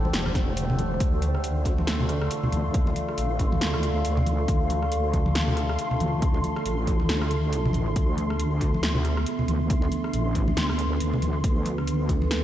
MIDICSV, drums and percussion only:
0, 0, Header, 1, 2, 480
1, 0, Start_track
1, 0, Tempo, 434783
1, 1110, Time_signature, 4, 2, 24, 8
1, 13730, End_track
2, 0, Start_track
2, 0, Title_t, "Drums"
2, 55, Note_on_c, 9, 63, 87
2, 148, Note_on_c, 9, 38, 109
2, 148, Note_on_c, 9, 42, 79
2, 165, Note_off_c, 9, 63, 0
2, 259, Note_off_c, 9, 38, 0
2, 259, Note_off_c, 9, 42, 0
2, 287, Note_on_c, 9, 37, 75
2, 292, Note_on_c, 9, 63, 82
2, 388, Note_on_c, 9, 38, 58
2, 388, Note_on_c, 9, 42, 53
2, 389, Note_on_c, 9, 36, 59
2, 397, Note_off_c, 9, 37, 0
2, 402, Note_off_c, 9, 63, 0
2, 498, Note_off_c, 9, 38, 0
2, 498, Note_off_c, 9, 42, 0
2, 499, Note_off_c, 9, 36, 0
2, 628, Note_on_c, 9, 42, 82
2, 739, Note_off_c, 9, 42, 0
2, 770, Note_on_c, 9, 64, 90
2, 868, Note_on_c, 9, 42, 56
2, 875, Note_on_c, 9, 63, 88
2, 880, Note_off_c, 9, 64, 0
2, 978, Note_off_c, 9, 42, 0
2, 985, Note_off_c, 9, 63, 0
2, 1108, Note_on_c, 9, 42, 81
2, 1109, Note_on_c, 9, 36, 121
2, 1218, Note_off_c, 9, 42, 0
2, 1219, Note_off_c, 9, 36, 0
2, 1348, Note_on_c, 9, 42, 56
2, 1351, Note_on_c, 9, 63, 61
2, 1459, Note_off_c, 9, 42, 0
2, 1462, Note_off_c, 9, 63, 0
2, 1487, Note_on_c, 9, 37, 55
2, 1588, Note_on_c, 9, 42, 79
2, 1597, Note_off_c, 9, 37, 0
2, 1698, Note_off_c, 9, 42, 0
2, 1824, Note_on_c, 9, 62, 65
2, 1828, Note_on_c, 9, 42, 53
2, 1829, Note_on_c, 9, 36, 57
2, 1934, Note_off_c, 9, 62, 0
2, 1939, Note_off_c, 9, 36, 0
2, 1939, Note_off_c, 9, 42, 0
2, 1970, Note_on_c, 9, 63, 93
2, 2068, Note_on_c, 9, 37, 51
2, 2068, Note_on_c, 9, 38, 112
2, 2068, Note_on_c, 9, 42, 83
2, 2080, Note_off_c, 9, 63, 0
2, 2179, Note_off_c, 9, 37, 0
2, 2179, Note_off_c, 9, 38, 0
2, 2179, Note_off_c, 9, 42, 0
2, 2212, Note_on_c, 9, 64, 85
2, 2305, Note_on_c, 9, 62, 39
2, 2308, Note_on_c, 9, 37, 57
2, 2308, Note_on_c, 9, 42, 55
2, 2322, Note_off_c, 9, 64, 0
2, 2416, Note_off_c, 9, 62, 0
2, 2418, Note_off_c, 9, 37, 0
2, 2418, Note_off_c, 9, 42, 0
2, 2446, Note_on_c, 9, 37, 73
2, 2547, Note_on_c, 9, 42, 81
2, 2557, Note_off_c, 9, 37, 0
2, 2658, Note_off_c, 9, 42, 0
2, 2688, Note_on_c, 9, 64, 98
2, 2787, Note_on_c, 9, 42, 54
2, 2788, Note_on_c, 9, 63, 78
2, 2799, Note_off_c, 9, 64, 0
2, 2898, Note_off_c, 9, 42, 0
2, 2899, Note_off_c, 9, 63, 0
2, 3027, Note_on_c, 9, 42, 78
2, 3029, Note_on_c, 9, 36, 122
2, 3138, Note_off_c, 9, 42, 0
2, 3139, Note_off_c, 9, 36, 0
2, 3169, Note_on_c, 9, 62, 66
2, 3268, Note_on_c, 9, 42, 53
2, 3275, Note_on_c, 9, 63, 64
2, 3279, Note_off_c, 9, 62, 0
2, 3378, Note_off_c, 9, 42, 0
2, 3385, Note_off_c, 9, 63, 0
2, 3407, Note_on_c, 9, 37, 60
2, 3508, Note_on_c, 9, 42, 77
2, 3517, Note_off_c, 9, 37, 0
2, 3618, Note_off_c, 9, 42, 0
2, 3743, Note_on_c, 9, 62, 57
2, 3748, Note_on_c, 9, 42, 52
2, 3749, Note_on_c, 9, 36, 61
2, 3854, Note_off_c, 9, 62, 0
2, 3858, Note_off_c, 9, 42, 0
2, 3859, Note_off_c, 9, 36, 0
2, 3890, Note_on_c, 9, 63, 99
2, 3989, Note_on_c, 9, 38, 117
2, 3989, Note_on_c, 9, 42, 81
2, 4000, Note_off_c, 9, 63, 0
2, 4099, Note_off_c, 9, 38, 0
2, 4099, Note_off_c, 9, 42, 0
2, 4127, Note_on_c, 9, 37, 80
2, 4229, Note_on_c, 9, 42, 52
2, 4237, Note_off_c, 9, 37, 0
2, 4339, Note_off_c, 9, 42, 0
2, 4468, Note_on_c, 9, 42, 78
2, 4578, Note_off_c, 9, 42, 0
2, 4607, Note_on_c, 9, 64, 97
2, 4707, Note_on_c, 9, 63, 95
2, 4708, Note_on_c, 9, 42, 53
2, 4717, Note_off_c, 9, 64, 0
2, 4818, Note_off_c, 9, 63, 0
2, 4819, Note_off_c, 9, 42, 0
2, 4948, Note_on_c, 9, 42, 77
2, 4949, Note_on_c, 9, 36, 119
2, 5059, Note_off_c, 9, 36, 0
2, 5059, Note_off_c, 9, 42, 0
2, 5189, Note_on_c, 9, 42, 52
2, 5195, Note_on_c, 9, 63, 62
2, 5299, Note_off_c, 9, 42, 0
2, 5305, Note_off_c, 9, 63, 0
2, 5327, Note_on_c, 9, 37, 60
2, 5428, Note_on_c, 9, 42, 75
2, 5437, Note_off_c, 9, 37, 0
2, 5539, Note_off_c, 9, 42, 0
2, 5669, Note_on_c, 9, 36, 62
2, 5669, Note_on_c, 9, 42, 52
2, 5672, Note_on_c, 9, 62, 53
2, 5779, Note_off_c, 9, 36, 0
2, 5779, Note_off_c, 9, 42, 0
2, 5783, Note_off_c, 9, 62, 0
2, 5806, Note_on_c, 9, 63, 100
2, 5909, Note_on_c, 9, 37, 54
2, 5909, Note_on_c, 9, 38, 123
2, 5909, Note_on_c, 9, 42, 75
2, 5917, Note_off_c, 9, 63, 0
2, 6020, Note_off_c, 9, 37, 0
2, 6020, Note_off_c, 9, 38, 0
2, 6020, Note_off_c, 9, 42, 0
2, 6048, Note_on_c, 9, 64, 96
2, 6148, Note_on_c, 9, 37, 60
2, 6148, Note_on_c, 9, 42, 50
2, 6150, Note_on_c, 9, 62, 33
2, 6158, Note_off_c, 9, 64, 0
2, 6258, Note_off_c, 9, 37, 0
2, 6258, Note_off_c, 9, 42, 0
2, 6261, Note_off_c, 9, 62, 0
2, 6287, Note_on_c, 9, 37, 79
2, 6388, Note_on_c, 9, 42, 74
2, 6397, Note_off_c, 9, 37, 0
2, 6498, Note_off_c, 9, 42, 0
2, 6527, Note_on_c, 9, 64, 87
2, 6628, Note_on_c, 9, 42, 50
2, 6635, Note_on_c, 9, 63, 96
2, 6637, Note_off_c, 9, 64, 0
2, 6738, Note_off_c, 9, 42, 0
2, 6746, Note_off_c, 9, 63, 0
2, 6868, Note_on_c, 9, 42, 76
2, 6869, Note_on_c, 9, 36, 118
2, 6979, Note_off_c, 9, 36, 0
2, 6979, Note_off_c, 9, 42, 0
2, 7003, Note_on_c, 9, 62, 55
2, 7108, Note_on_c, 9, 63, 71
2, 7109, Note_on_c, 9, 42, 51
2, 7114, Note_off_c, 9, 62, 0
2, 7218, Note_off_c, 9, 63, 0
2, 7219, Note_off_c, 9, 42, 0
2, 7247, Note_on_c, 9, 37, 65
2, 7252, Note_on_c, 9, 62, 34
2, 7348, Note_on_c, 9, 42, 74
2, 7357, Note_off_c, 9, 37, 0
2, 7362, Note_off_c, 9, 62, 0
2, 7459, Note_off_c, 9, 42, 0
2, 7588, Note_on_c, 9, 42, 50
2, 7589, Note_on_c, 9, 36, 62
2, 7590, Note_on_c, 9, 62, 61
2, 7699, Note_off_c, 9, 42, 0
2, 7700, Note_off_c, 9, 36, 0
2, 7700, Note_off_c, 9, 62, 0
2, 7725, Note_on_c, 9, 63, 93
2, 7828, Note_on_c, 9, 38, 117
2, 7828, Note_on_c, 9, 42, 72
2, 7836, Note_off_c, 9, 63, 0
2, 7938, Note_off_c, 9, 38, 0
2, 7938, Note_off_c, 9, 42, 0
2, 7966, Note_on_c, 9, 37, 82
2, 8068, Note_on_c, 9, 42, 49
2, 8077, Note_off_c, 9, 37, 0
2, 8178, Note_off_c, 9, 42, 0
2, 8309, Note_on_c, 9, 42, 74
2, 8419, Note_off_c, 9, 42, 0
2, 8451, Note_on_c, 9, 64, 90
2, 8537, Note_on_c, 9, 63, 103
2, 8548, Note_on_c, 9, 42, 48
2, 8561, Note_off_c, 9, 64, 0
2, 8647, Note_off_c, 9, 63, 0
2, 8658, Note_off_c, 9, 42, 0
2, 8788, Note_on_c, 9, 42, 74
2, 8789, Note_on_c, 9, 36, 118
2, 8898, Note_off_c, 9, 42, 0
2, 8899, Note_off_c, 9, 36, 0
2, 9025, Note_on_c, 9, 63, 64
2, 9029, Note_on_c, 9, 42, 51
2, 9135, Note_off_c, 9, 63, 0
2, 9139, Note_off_c, 9, 42, 0
2, 9167, Note_on_c, 9, 37, 64
2, 9269, Note_on_c, 9, 42, 77
2, 9277, Note_off_c, 9, 37, 0
2, 9379, Note_off_c, 9, 42, 0
2, 9504, Note_on_c, 9, 62, 59
2, 9508, Note_on_c, 9, 42, 51
2, 9509, Note_on_c, 9, 36, 58
2, 9614, Note_off_c, 9, 62, 0
2, 9618, Note_off_c, 9, 42, 0
2, 9619, Note_off_c, 9, 36, 0
2, 9653, Note_on_c, 9, 63, 92
2, 9748, Note_on_c, 9, 37, 52
2, 9748, Note_on_c, 9, 38, 116
2, 9748, Note_on_c, 9, 42, 72
2, 9764, Note_off_c, 9, 63, 0
2, 9858, Note_off_c, 9, 37, 0
2, 9858, Note_off_c, 9, 38, 0
2, 9858, Note_off_c, 9, 42, 0
2, 9877, Note_on_c, 9, 64, 96
2, 9987, Note_off_c, 9, 64, 0
2, 9988, Note_on_c, 9, 37, 63
2, 9988, Note_on_c, 9, 42, 49
2, 9991, Note_on_c, 9, 62, 35
2, 10099, Note_off_c, 9, 37, 0
2, 10099, Note_off_c, 9, 42, 0
2, 10101, Note_off_c, 9, 62, 0
2, 10127, Note_on_c, 9, 37, 80
2, 10228, Note_on_c, 9, 42, 74
2, 10238, Note_off_c, 9, 37, 0
2, 10338, Note_off_c, 9, 42, 0
2, 10366, Note_on_c, 9, 64, 82
2, 10469, Note_on_c, 9, 42, 52
2, 10470, Note_on_c, 9, 63, 85
2, 10477, Note_off_c, 9, 64, 0
2, 10579, Note_off_c, 9, 42, 0
2, 10580, Note_off_c, 9, 63, 0
2, 10709, Note_on_c, 9, 36, 113
2, 10709, Note_on_c, 9, 42, 78
2, 10819, Note_off_c, 9, 36, 0
2, 10819, Note_off_c, 9, 42, 0
2, 10844, Note_on_c, 9, 62, 60
2, 10948, Note_on_c, 9, 42, 52
2, 10954, Note_off_c, 9, 62, 0
2, 10954, Note_on_c, 9, 63, 64
2, 11059, Note_off_c, 9, 42, 0
2, 11064, Note_off_c, 9, 63, 0
2, 11087, Note_on_c, 9, 37, 60
2, 11189, Note_on_c, 9, 42, 75
2, 11197, Note_off_c, 9, 37, 0
2, 11299, Note_off_c, 9, 42, 0
2, 11428, Note_on_c, 9, 42, 54
2, 11429, Note_on_c, 9, 36, 56
2, 11430, Note_on_c, 9, 62, 62
2, 11539, Note_off_c, 9, 36, 0
2, 11539, Note_off_c, 9, 42, 0
2, 11540, Note_off_c, 9, 62, 0
2, 11568, Note_on_c, 9, 63, 86
2, 11669, Note_on_c, 9, 38, 112
2, 11669, Note_on_c, 9, 42, 78
2, 11678, Note_off_c, 9, 63, 0
2, 11779, Note_off_c, 9, 38, 0
2, 11779, Note_off_c, 9, 42, 0
2, 11808, Note_on_c, 9, 37, 84
2, 11909, Note_on_c, 9, 42, 52
2, 11918, Note_off_c, 9, 37, 0
2, 12019, Note_off_c, 9, 42, 0
2, 12149, Note_on_c, 9, 42, 78
2, 12259, Note_off_c, 9, 42, 0
2, 12294, Note_on_c, 9, 64, 84
2, 12389, Note_on_c, 9, 42, 50
2, 12395, Note_on_c, 9, 63, 91
2, 12404, Note_off_c, 9, 64, 0
2, 12499, Note_off_c, 9, 42, 0
2, 12505, Note_off_c, 9, 63, 0
2, 12629, Note_on_c, 9, 36, 113
2, 12629, Note_on_c, 9, 42, 80
2, 12739, Note_off_c, 9, 36, 0
2, 12739, Note_off_c, 9, 42, 0
2, 12863, Note_on_c, 9, 63, 64
2, 12869, Note_on_c, 9, 42, 53
2, 12974, Note_off_c, 9, 63, 0
2, 12980, Note_off_c, 9, 42, 0
2, 13008, Note_on_c, 9, 37, 58
2, 13109, Note_on_c, 9, 42, 80
2, 13119, Note_off_c, 9, 37, 0
2, 13220, Note_off_c, 9, 42, 0
2, 13348, Note_on_c, 9, 36, 57
2, 13349, Note_on_c, 9, 42, 55
2, 13354, Note_on_c, 9, 62, 66
2, 13459, Note_off_c, 9, 36, 0
2, 13460, Note_off_c, 9, 42, 0
2, 13464, Note_off_c, 9, 62, 0
2, 13488, Note_on_c, 9, 63, 78
2, 13589, Note_on_c, 9, 37, 50
2, 13589, Note_on_c, 9, 38, 112
2, 13589, Note_on_c, 9, 42, 81
2, 13599, Note_off_c, 9, 63, 0
2, 13699, Note_off_c, 9, 37, 0
2, 13699, Note_off_c, 9, 38, 0
2, 13699, Note_off_c, 9, 42, 0
2, 13730, End_track
0, 0, End_of_file